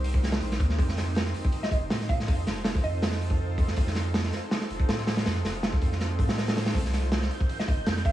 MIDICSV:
0, 0, Header, 1, 6, 480
1, 0, Start_track
1, 0, Tempo, 372671
1, 1016, Time_signature, 4, 2, 24, 8
1, 10461, End_track
2, 0, Start_track
2, 0, Title_t, "Synth texture"
2, 0, Program_c, 0, 99
2, 8690, Note_on_c, 0, 91, 87
2, 10461, Note_off_c, 0, 91, 0
2, 10461, End_track
3, 0, Start_track
3, 0, Title_t, "Synth pluck"
3, 0, Program_c, 1, 84
3, 2098, Note_on_c, 1, 75, 88
3, 2173, Note_off_c, 1, 75, 0
3, 2215, Note_on_c, 1, 75, 76
3, 2296, Note_off_c, 1, 75, 0
3, 2692, Note_on_c, 1, 77, 95
3, 2984, Note_off_c, 1, 77, 0
3, 3653, Note_on_c, 1, 75, 94
3, 4135, Note_off_c, 1, 75, 0
3, 9781, Note_on_c, 1, 75, 88
3, 9855, Note_off_c, 1, 75, 0
3, 9892, Note_on_c, 1, 75, 78
3, 9974, Note_off_c, 1, 75, 0
3, 10374, Note_on_c, 1, 77, 91
3, 10461, Note_off_c, 1, 77, 0
3, 10461, End_track
4, 0, Start_track
4, 0, Title_t, "Sub bass"
4, 0, Program_c, 2, 38
4, 0, Note_on_c, 2, 36, 92
4, 526, Note_off_c, 2, 36, 0
4, 534, Note_on_c, 2, 34, 91
4, 752, Note_off_c, 2, 34, 0
4, 772, Note_on_c, 2, 39, 83
4, 991, Note_off_c, 2, 39, 0
4, 1011, Note_on_c, 2, 41, 98
4, 1715, Note_off_c, 2, 41, 0
4, 2204, Note_on_c, 2, 29, 95
4, 2427, Note_off_c, 2, 29, 0
4, 2456, Note_on_c, 2, 45, 89
4, 2918, Note_off_c, 2, 45, 0
4, 2939, Note_on_c, 2, 41, 99
4, 3155, Note_off_c, 2, 41, 0
4, 3175, Note_on_c, 2, 29, 85
4, 3637, Note_off_c, 2, 29, 0
4, 3657, Note_on_c, 2, 41, 92
4, 4838, Note_off_c, 2, 41, 0
4, 4858, Note_on_c, 2, 41, 96
4, 5558, Note_off_c, 2, 41, 0
4, 6052, Note_on_c, 2, 29, 97
4, 6271, Note_off_c, 2, 29, 0
4, 6294, Note_on_c, 2, 45, 89
4, 6757, Note_off_c, 2, 45, 0
4, 6771, Note_on_c, 2, 41, 97
4, 6991, Note_off_c, 2, 41, 0
4, 7012, Note_on_c, 2, 29, 87
4, 7475, Note_off_c, 2, 29, 0
4, 7496, Note_on_c, 2, 41, 93
4, 7973, Note_on_c, 2, 45, 106
4, 7992, Note_off_c, 2, 41, 0
4, 8676, Note_off_c, 2, 45, 0
4, 8688, Note_on_c, 2, 36, 96
4, 9394, Note_off_c, 2, 36, 0
4, 9890, Note_on_c, 2, 31, 99
4, 10110, Note_off_c, 2, 31, 0
4, 10134, Note_on_c, 2, 41, 86
4, 10461, Note_off_c, 2, 41, 0
4, 10461, End_track
5, 0, Start_track
5, 0, Title_t, "Swell"
5, 0, Program_c, 3, 103
5, 7734, Note_on_c, 3, 60, 62
5, 8695, Note_off_c, 3, 60, 0
5, 10461, End_track
6, 0, Start_track
6, 0, Title_t, "Drums"
6, 53, Note_on_c, 9, 46, 88
6, 182, Note_off_c, 9, 46, 0
6, 182, Note_on_c, 9, 36, 91
6, 301, Note_on_c, 9, 38, 58
6, 306, Note_on_c, 9, 46, 68
6, 311, Note_off_c, 9, 36, 0
6, 416, Note_off_c, 9, 38, 0
6, 416, Note_on_c, 9, 38, 127
6, 434, Note_off_c, 9, 46, 0
6, 531, Note_on_c, 9, 46, 91
6, 545, Note_off_c, 9, 38, 0
6, 660, Note_off_c, 9, 46, 0
6, 665, Note_on_c, 9, 38, 48
6, 771, Note_on_c, 9, 36, 104
6, 776, Note_on_c, 9, 46, 69
6, 793, Note_off_c, 9, 38, 0
6, 896, Note_on_c, 9, 38, 41
6, 900, Note_off_c, 9, 36, 0
6, 904, Note_off_c, 9, 46, 0
6, 1012, Note_on_c, 9, 36, 117
6, 1023, Note_on_c, 9, 46, 87
6, 1025, Note_off_c, 9, 38, 0
6, 1141, Note_off_c, 9, 36, 0
6, 1143, Note_on_c, 9, 38, 40
6, 1152, Note_off_c, 9, 46, 0
6, 1252, Note_on_c, 9, 46, 77
6, 1255, Note_off_c, 9, 38, 0
6, 1255, Note_on_c, 9, 38, 47
6, 1380, Note_off_c, 9, 46, 0
6, 1384, Note_off_c, 9, 38, 0
6, 1482, Note_on_c, 9, 46, 78
6, 1499, Note_on_c, 9, 38, 118
6, 1606, Note_off_c, 9, 38, 0
6, 1606, Note_on_c, 9, 38, 49
6, 1611, Note_off_c, 9, 46, 0
6, 1728, Note_on_c, 9, 46, 69
6, 1735, Note_off_c, 9, 38, 0
6, 1857, Note_off_c, 9, 46, 0
6, 1862, Note_on_c, 9, 36, 104
6, 1961, Note_on_c, 9, 46, 84
6, 1990, Note_off_c, 9, 36, 0
6, 2090, Note_off_c, 9, 46, 0
6, 2102, Note_on_c, 9, 38, 54
6, 2205, Note_on_c, 9, 36, 93
6, 2211, Note_on_c, 9, 46, 65
6, 2231, Note_off_c, 9, 38, 0
6, 2333, Note_off_c, 9, 36, 0
6, 2340, Note_off_c, 9, 46, 0
6, 2451, Note_on_c, 9, 38, 121
6, 2461, Note_on_c, 9, 46, 83
6, 2571, Note_off_c, 9, 38, 0
6, 2571, Note_on_c, 9, 38, 40
6, 2590, Note_off_c, 9, 46, 0
6, 2695, Note_on_c, 9, 36, 104
6, 2696, Note_on_c, 9, 46, 71
6, 2700, Note_off_c, 9, 38, 0
6, 2823, Note_off_c, 9, 36, 0
6, 2825, Note_off_c, 9, 46, 0
6, 2831, Note_on_c, 9, 38, 50
6, 2937, Note_on_c, 9, 46, 93
6, 2939, Note_on_c, 9, 36, 115
6, 2960, Note_off_c, 9, 38, 0
6, 3066, Note_off_c, 9, 46, 0
6, 3067, Note_off_c, 9, 36, 0
6, 3180, Note_on_c, 9, 38, 57
6, 3180, Note_on_c, 9, 46, 68
6, 3308, Note_off_c, 9, 38, 0
6, 3308, Note_off_c, 9, 46, 0
6, 3406, Note_on_c, 9, 38, 116
6, 3416, Note_on_c, 9, 46, 79
6, 3535, Note_off_c, 9, 38, 0
6, 3541, Note_on_c, 9, 36, 105
6, 3545, Note_off_c, 9, 46, 0
6, 3654, Note_on_c, 9, 46, 65
6, 3670, Note_off_c, 9, 36, 0
6, 3783, Note_off_c, 9, 46, 0
6, 3893, Note_on_c, 9, 38, 100
6, 3898, Note_on_c, 9, 46, 77
6, 4010, Note_off_c, 9, 38, 0
6, 4010, Note_on_c, 9, 38, 42
6, 4027, Note_off_c, 9, 46, 0
6, 4138, Note_off_c, 9, 38, 0
6, 4139, Note_on_c, 9, 46, 69
6, 4252, Note_on_c, 9, 36, 93
6, 4268, Note_off_c, 9, 46, 0
6, 4380, Note_off_c, 9, 36, 0
6, 4609, Note_on_c, 9, 36, 96
6, 4617, Note_on_c, 9, 46, 71
6, 4733, Note_on_c, 9, 38, 44
6, 4738, Note_off_c, 9, 36, 0
6, 4746, Note_off_c, 9, 46, 0
6, 4847, Note_on_c, 9, 46, 88
6, 4857, Note_on_c, 9, 36, 109
6, 4862, Note_off_c, 9, 38, 0
6, 4976, Note_off_c, 9, 46, 0
6, 4986, Note_off_c, 9, 36, 0
6, 4986, Note_on_c, 9, 38, 38
6, 5087, Note_on_c, 9, 46, 72
6, 5091, Note_off_c, 9, 38, 0
6, 5091, Note_on_c, 9, 38, 47
6, 5216, Note_off_c, 9, 46, 0
6, 5220, Note_off_c, 9, 38, 0
6, 5335, Note_on_c, 9, 38, 122
6, 5336, Note_on_c, 9, 46, 77
6, 5458, Note_off_c, 9, 38, 0
6, 5458, Note_on_c, 9, 38, 47
6, 5464, Note_off_c, 9, 46, 0
6, 5573, Note_off_c, 9, 38, 0
6, 5573, Note_on_c, 9, 38, 40
6, 5576, Note_on_c, 9, 46, 58
6, 5702, Note_off_c, 9, 38, 0
6, 5704, Note_off_c, 9, 46, 0
6, 5813, Note_on_c, 9, 38, 110
6, 5819, Note_on_c, 9, 46, 79
6, 5935, Note_off_c, 9, 38, 0
6, 5935, Note_on_c, 9, 38, 39
6, 5948, Note_off_c, 9, 46, 0
6, 6057, Note_on_c, 9, 46, 65
6, 6064, Note_off_c, 9, 38, 0
6, 6176, Note_on_c, 9, 36, 87
6, 6186, Note_off_c, 9, 46, 0
6, 6293, Note_on_c, 9, 38, 120
6, 6294, Note_on_c, 9, 46, 90
6, 6305, Note_off_c, 9, 36, 0
6, 6412, Note_off_c, 9, 38, 0
6, 6412, Note_on_c, 9, 38, 43
6, 6422, Note_off_c, 9, 46, 0
6, 6530, Note_off_c, 9, 38, 0
6, 6530, Note_on_c, 9, 38, 101
6, 6541, Note_on_c, 9, 46, 91
6, 6653, Note_off_c, 9, 46, 0
6, 6653, Note_on_c, 9, 46, 73
6, 6659, Note_off_c, 9, 38, 0
6, 6659, Note_on_c, 9, 38, 112
6, 6770, Note_off_c, 9, 38, 0
6, 6770, Note_on_c, 9, 38, 99
6, 6771, Note_off_c, 9, 46, 0
6, 6771, Note_on_c, 9, 46, 82
6, 6899, Note_off_c, 9, 38, 0
6, 6900, Note_off_c, 9, 46, 0
6, 7015, Note_on_c, 9, 38, 52
6, 7016, Note_on_c, 9, 46, 71
6, 7144, Note_off_c, 9, 38, 0
6, 7145, Note_off_c, 9, 46, 0
6, 7252, Note_on_c, 9, 38, 104
6, 7258, Note_on_c, 9, 46, 77
6, 7377, Note_on_c, 9, 36, 104
6, 7381, Note_off_c, 9, 38, 0
6, 7387, Note_off_c, 9, 46, 0
6, 7489, Note_on_c, 9, 46, 72
6, 7495, Note_off_c, 9, 36, 0
6, 7495, Note_on_c, 9, 36, 100
6, 7618, Note_off_c, 9, 46, 0
6, 7624, Note_off_c, 9, 36, 0
6, 7627, Note_on_c, 9, 38, 33
6, 7733, Note_off_c, 9, 38, 0
6, 7733, Note_on_c, 9, 38, 44
6, 7736, Note_on_c, 9, 46, 58
6, 7862, Note_off_c, 9, 38, 0
6, 7864, Note_off_c, 9, 46, 0
6, 7972, Note_on_c, 9, 36, 95
6, 7978, Note_on_c, 9, 46, 70
6, 8100, Note_on_c, 9, 38, 102
6, 8101, Note_off_c, 9, 36, 0
6, 8106, Note_off_c, 9, 46, 0
6, 8109, Note_on_c, 9, 46, 78
6, 8214, Note_off_c, 9, 38, 0
6, 8214, Note_on_c, 9, 38, 101
6, 8221, Note_off_c, 9, 46, 0
6, 8221, Note_on_c, 9, 46, 77
6, 8335, Note_off_c, 9, 46, 0
6, 8335, Note_on_c, 9, 46, 75
6, 8343, Note_off_c, 9, 38, 0
6, 8347, Note_on_c, 9, 38, 107
6, 8446, Note_off_c, 9, 46, 0
6, 8446, Note_on_c, 9, 46, 89
6, 8458, Note_off_c, 9, 38, 0
6, 8458, Note_on_c, 9, 38, 104
6, 8573, Note_off_c, 9, 46, 0
6, 8573, Note_on_c, 9, 46, 83
6, 8579, Note_off_c, 9, 38, 0
6, 8579, Note_on_c, 9, 38, 113
6, 8686, Note_on_c, 9, 36, 106
6, 8702, Note_off_c, 9, 46, 0
6, 8706, Note_on_c, 9, 46, 92
6, 8708, Note_off_c, 9, 38, 0
6, 8815, Note_off_c, 9, 36, 0
6, 8823, Note_on_c, 9, 38, 38
6, 8835, Note_off_c, 9, 46, 0
6, 8927, Note_off_c, 9, 38, 0
6, 8927, Note_on_c, 9, 38, 44
6, 8929, Note_on_c, 9, 46, 70
6, 9055, Note_off_c, 9, 38, 0
6, 9058, Note_off_c, 9, 46, 0
6, 9166, Note_on_c, 9, 38, 117
6, 9167, Note_on_c, 9, 46, 76
6, 9295, Note_off_c, 9, 38, 0
6, 9295, Note_off_c, 9, 46, 0
6, 9301, Note_on_c, 9, 38, 50
6, 9413, Note_on_c, 9, 46, 68
6, 9430, Note_off_c, 9, 38, 0
6, 9537, Note_on_c, 9, 36, 93
6, 9541, Note_off_c, 9, 46, 0
6, 9651, Note_on_c, 9, 46, 87
6, 9666, Note_off_c, 9, 36, 0
6, 9780, Note_off_c, 9, 46, 0
6, 9785, Note_on_c, 9, 38, 51
6, 9891, Note_on_c, 9, 36, 103
6, 9898, Note_on_c, 9, 46, 76
6, 9913, Note_off_c, 9, 38, 0
6, 10019, Note_off_c, 9, 36, 0
6, 10027, Note_off_c, 9, 46, 0
6, 10128, Note_on_c, 9, 46, 85
6, 10131, Note_on_c, 9, 38, 121
6, 10257, Note_off_c, 9, 38, 0
6, 10257, Note_off_c, 9, 46, 0
6, 10257, Note_on_c, 9, 38, 41
6, 10369, Note_on_c, 9, 36, 97
6, 10378, Note_on_c, 9, 46, 66
6, 10386, Note_off_c, 9, 38, 0
6, 10461, Note_off_c, 9, 36, 0
6, 10461, Note_off_c, 9, 46, 0
6, 10461, End_track
0, 0, End_of_file